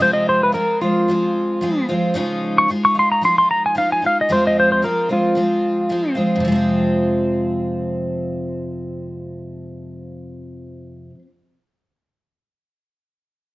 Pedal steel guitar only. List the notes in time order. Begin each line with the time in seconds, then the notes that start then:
0.02 C5
0.13 D#5
0.29 C5
0.43 B4
0.54 A#4
0.82 F4
2.58 C#6
2.85 C#6
2.99 C6
3.12 A#5
3.25 C6
3.38 C6
3.51 A#5
3.66 G#5
3.78 F5
3.92 G#5
4.06 F5
4.21 D#5
4.32 C5
4.47 D#5
4.60 C5
4.72 C5
4.84 A#4
5.13 F4